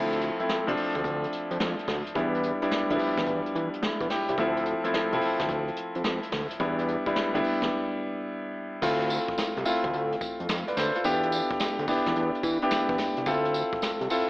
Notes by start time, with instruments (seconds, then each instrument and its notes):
Already playing: analog synth bass D2, grand piano F3 A3 C4 E4
0.12 closed hi-hat
0.21 closed hi-hat
0.39 grand piano F3 A3 C4 E4, closed hi-hat
0.49 snare
0.67 analog synth bass C2, grand piano F3 A3 C4 D4, closed hi-hat
0.77 open hi-hat
0.95 analog synth bass D2, kick, closed hi-hat
1.04 analog synth bass D2, kick, closed hi-hat
1.24 closed hi-hat
1.32 closed hi-hat
1.51 analog synth bass F2, closed hi-hat
1.60 analog synth bass F2, snare
1.79 closed hi-hat
1.88 analog synth bass D2, kick, snare, open hi-hat
2.06 closed hi-hat
2.15 analog synth bass E2, grand piano G3 B3 D4 E4, kick, closed hi-hat
2.34 closed hi-hat
2.43 closed hi-hat
2.62 grand piano G3 B3 D4 E4, closed hi-hat
2.71 snare
2.90 analog synth bass D2, grand piano F3 B3 D4 E4, closed hi-hat
2.96 grand piano G3, open hi-hat
3.18 analog synth bass E2, kick, snare, closed hi-hat
3.27 analog synth bass E2, kick, closed hi-hat
3.46 closed hi-hat
3.55 analog synth bass E3, closed hi-hat
3.73 closed hi-hat
3.82 analog synth bass E2, grand piano E4, snare
4.01 analog synth bass E2, kick, closed hi-hat
4.10 grand piano E4 G4, snare, open hi-hat
4.28 analog synth bass C2, grand piano E4, closed hi-hat
4.38 analog synth bass D2, grand piano F3 A3 C4 E4, kick, closed hi-hat
4.57 closed hi-hat
4.66 closed hi-hat
4.84 grand piano F3 A3 C4 E4, closed hi-hat
4.94 snare
5.12 analog synth bass C2, grand piano F3 A3 C4 E4, closed hi-hat
5.21 open hi-hat
5.40 analog synth bass D2, kick, snare, closed hi-hat
5.49 analog synth bass D2, kick, closed hi-hat
5.68 closed hi-hat
5.76 closed hi-hat
5.95 analog synth bass F2, closed hi-hat
6.04 analog synth bass F2, snare
6.23 closed hi-hat
6.32 analog synth bass D2, kick, snare, open hi-hat
6.50 closed hi-hat
6.60 analog synth bass E2, grand piano G3 B3 D4 E4, kick, closed hi-hat
6.79 closed hi-hat
6.88 closed hi-hat
7.06 grand piano G3 B3 D4 E4, kick, closed hi-hat
7.16 snare
7.34 analog synth bass D2, grand piano G3 B3 D4 E4, closed hi-hat
7.44 open hi-hat
7.62 analog synth bass E2, kick, snare, closed hi-hat
8.82 analog synth bass D2, grand piano A3 C4 E4 F4, kick, crash, tambourine
9.01 closed hi-hat
9.10 closed hi-hat, tambourine
9.28 kick, closed hi-hat
9.38 snare, tambourine
9.57 analog synth bass C2, closed hi-hat
9.65 grand piano A3 C4 E4 F4, open hi-hat, tambourine
9.84 analog synth bass D2, kick, closed hi-hat
9.93 analog synth bass D2, closed hi-hat
10.12 closed hi-hat
10.21 kick, closed hi-hat, tambourine
10.40 analog synth bass F2, closed hi-hat
10.49 analog synth bass F2, snare, tambourine
10.68 grand piano B4 D5, closed hi-hat
10.77 analog synth bass D2, grand piano A4 C5, snare, open hi-hat, tambourine
10.95 grand piano F4 A4, closed hi-hat
11.04 analog synth bass E2, grand piano B3 D4 E4 G4, closed hi-hat, tambourine
11.23 closed hi-hat
11.32 closed hi-hat, tambourine
11.51 kick, closed hi-hat
11.60 snare, tambourine
11.79 analog synth bass D2, closed hi-hat
11.88 grand piano B3 D4 E4 G4, kick, open hi-hat, tambourine
12.06 analog synth bass E2, kick, snare, closed hi-hat
12.16 analog synth bass E2, closed hi-hat
12.35 closed hi-hat
12.43 analog synth bass E3, kick, closed hi-hat, tambourine
12.62 grand piano B3 D4 E4 G4, closed hi-hat
12.71 analog synth bass E2, snare, tambourine
12.89 analog synth bass E2, kick, closed hi-hat
12.98 kick, snare, open hi-hat, tambourine
13.17 analog synth bass C2, closed hi-hat
13.26 analog synth bass D2, grand piano C4 E4 F4 A4, kick, closed hi-hat, tambourine
13.45 closed hi-hat
13.54 closed hi-hat, tambourine
13.72 kick, closed hi-hat
13.82 snare, tambourine
14.01 analog synth bass C2, closed hi-hat
14.10 grand piano C4 E4 F4 A4, open hi-hat, tambourine